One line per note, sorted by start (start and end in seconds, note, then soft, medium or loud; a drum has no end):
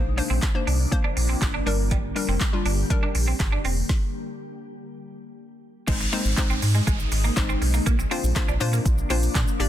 0.00 0.21 A#1 loud
0.00 1.62 C3 medium
0.00 1.65 F3 medium
0.00 0.10 A#3 medium
0.00 3.86 A#3 medium
0.00 0.10 D4 medium
0.00 1.65 D4 medium
0.00 0.10 C5 medium
0.17 0.44 A#3 medium
0.17 0.44 D4 medium
0.17 0.44 C5 medium
0.17 muted clean electric guitar stroke soft
0.17 open hi-hat medium
0.30 0.39 A#1 medium
0.30 0.38 C4 medium
0.42 kick loud
0.42 snare loud
0.42 clap loud
0.42 closed hi-hat medium
0.55 0.81 A#3 medium
0.55 0.81 D4 medium
0.55 0.81 C5 loud
0.67 0.86 C2 medium
0.67 0.75 D4 medium
0.67 open hi-hat medium
0.91 1.61 A#3 medium
0.91 1.62 D4 medium
0.91 1.62 C5 loud
0.91 kick loud
0.91 closed hi-hat medium
1.04 1.12 D4 medium
1.17 1.35 A#1 medium
1.17 muted clean electric guitar stroke soft
1.17 open hi-hat medium
1.29 1.37 C4 medium
1.42 1.60 G#1 loud
1.42 muted clean electric guitar stroke soft
1.42 kick loud
1.42 snare medium
1.42 clap loud
1.42 closed hi-hat medium
1.54 1.62 D4 medium
1.66 2.13 G1 medium
1.66 3.87 D3 medium
1.66 2.06 G3 loud
1.66 3.87 G3 medium
1.66 2.06 D4 medium
1.66 1.75 D4 medium
1.66 3.87 G4 medium
1.66 2.06 A#4 loud
1.66 open hi-hat medium
1.91 1.99 G3 medium
1.91 kick loud
1.91 closed hi-hat medium
2.16 2.42 G3 medium
2.16 2.42 D4 medium
2.16 2.42 A#4 medium
2.16 muted clean electric guitar stroke soft
2.16 open hi-hat medium
2.28 2.38 F1 medium
2.28 2.37 C4 medium
2.41 kick loud
2.41 snare medium
2.41 clap loud
2.41 closed hi-hat medium
2.53 2.79 G3 medium
2.53 2.79 D4 medium
2.53 2.79 F4 medium
2.65 2.84 G1 loud
2.65 2.74 D4 medium
2.65 open hi-hat medium
2.90 3.60 G3 loud
2.90 3.60 D4 medium
2.90 3.60 A#4 loud
2.90 kick loud
2.90 closed hi-hat medium
3.03 3.11 D4 medium
3.15 3.34 A#1 loud
3.15 muted clean electric guitar stroke soft
3.15 open hi-hat medium
3.28 3.36 C4 medium
3.40 3.58 G1 medium
3.40 muted clean electric guitar stroke soft
3.40 kick loud
3.40 snare medium
3.40 clap loud
3.40 closed hi-hat medium
3.52 3.60 D4 medium
3.65 3.83 E1 medium
3.65 3.73 C4 medium
3.65 open hi-hat medium
3.89 kick loud
3.89 snare medium
5.87 6.06 G#1 loud
5.87 7.84 C3 medium
5.87 7.84 D#3 medium
5.87 6.05 G#3 medium
5.87 7.84 G#3 medium
5.87 5.96 G#3 medium
5.87 6.05 C4 medium
5.87 7.84 D#4 medium
5.87 6.05 D#4 medium
5.87 6.05 C5 medium
5.87 kick loud
5.87 closed hi-hat medium
5.87 crash loud
5.87 downlifter medium
5.87 shaker medium
6.01 muted clean electric guitar stroke soft
6.01 shaker medium
6.12 6.30 G#3 medium
6.12 6.21 A#3 medium
6.12 6.30 C4 medium
6.12 6.30 D#4 medium
6.12 6.30 C5 medium
6.12 open hi-hat medium
6.12 shaker medium
6.25 6.34 G#1 loud
6.25 shaker medium
6.37 7.07 G#3 medium
6.37 7.07 C4 medium
6.37 7.07 D#4 medium
6.37 7.07 C5 loud
6.37 kick loud
6.37 snare loud
6.37 clap loud
6.37 closed hi-hat medium
6.37 shaker medium
6.50 6.59 G#1 loud
6.50 6.58 C4 medium
6.50 shaker medium
6.62 6.81 G#2 loud
6.62 muted clean electric guitar stroke soft
6.62 open hi-hat medium
6.62 shaker medium
6.75 6.83 G#3 medium
6.75 shaker medium
6.87 7.06 G#1 loud
6.87 6.95 G#3 medium
6.87 kick loud
6.87 closed hi-hat medium
6.87 shaker medium
7.00 shaker medium
7.12 7.30 G#1 loud
7.12 muted clean electric guitar stroke soft
7.12 open hi-hat medium
7.12 shaker medium
7.24 7.32 A#3 medium
7.24 shaker medium
7.36 7.55 G#1 medium
7.36 7.86 G#3 loud
7.36 7.86 C4 medium
7.36 7.86 D#4 medium
7.36 7.86 C5 loud
7.36 kick loud
7.36 snare medium
7.36 clap loud
7.36 closed hi-hat medium
7.36 shaker medium
7.49 7.57 C4 medium
7.49 shaker soft
7.62 7.80 B1 medium
7.62 muted clean electric guitar stroke soft
7.62 open hi-hat medium
7.62 shaker soft
7.74 7.82 A#3 medium
7.74 shaker medium
7.86 8.05 A#1 loud
7.86 9.58 C3 medium
7.86 9.58 F3 medium
7.86 7.94 A#3 loud
7.86 9.58 A#3 medium
7.86 9.58 D4 medium
7.86 kick loud
7.86 closed hi-hat medium
7.86 shaker medium
7.99 muted clean electric guitar stroke soft
7.99 shaker medium
8.11 8.28 A#3 medium
8.11 8.19 C4 medium
8.11 8.28 D4 medium
8.11 8.29 F4 medium
8.11 8.29 C5 loud
8.11 open hi-hat medium
8.11 shaker soft
8.24 8.33 A#1 loud
8.24 shaker medium
8.36 8.53 A#3 loud
8.36 8.53 D4 medium
8.36 8.53 F4 medium
8.36 8.53 C5 loud
8.36 kick loud
8.36 snare loud
8.36 clap loud
8.36 closed hi-hat medium
8.36 shaker medium
8.48 8.58 A#1 loud
8.48 8.56 D4 medium
8.48 shaker medium
8.60 8.79 A#2 loud
8.60 8.95 A#3 loud
8.60 8.95 D4 loud
8.60 8.95 F4 medium
8.60 8.96 C5 loud
8.60 muted clean electric guitar stroke soft
8.60 open hi-hat medium
8.60 shaker medium
8.73 8.81 A#3 medium
8.73 shaker medium
8.86 9.04 A#1 medium
8.86 kick loud
8.86 closed hi-hat medium
8.86 shaker medium
8.98 shaker medium
9.10 9.29 A#1 loud
9.10 9.58 A#3 loud
9.10 9.18 C4 medium
9.10 9.59 D4 medium
9.10 9.60 F4 medium
9.10 9.60 C5 loud
9.10 open hi-hat medium
9.10 shaker medium
9.23 shaker medium
9.35 9.44 A#2 loud
9.35 9.43 D4 medium
9.35 kick loud
9.35 snare medium
9.35 clap loud
9.35 closed hi-hat medium
9.35 shaker medium
9.48 shaker medium
9.60 9.69 G1 loud
9.60 9.69 D3 medium
9.60 9.69 G3 medium
9.60 9.69 A#3 medium
9.60 9.69 D4 medium
9.60 9.69 G4 medium
9.60 9.69 D5 loud
9.60 muted clean electric guitar stroke soft
9.60 open hi-hat medium
9.60 shaker soft